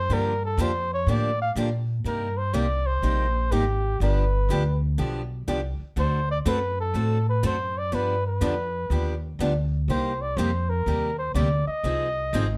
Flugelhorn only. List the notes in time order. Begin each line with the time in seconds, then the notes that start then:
Already playing: C5
0.13 A#4
0.45 A4
0.62 C5
0.94 C#5
1.11 D5
1.42 F5
2.07 A#4
2.38 C5
2.54 D5
2.87 C5
3.52 G4
4.02 B4
6.00 C5
6.32 D5
6.48 B4
6.80 A4
7.30 B4
7.46 C5
7.79 D5
7.95 B4
8.27 B4
9.90 C5
10.22 D5
10.37 C5
10.70 A#4
11.19 C5
11.35 D5
11.68 D#5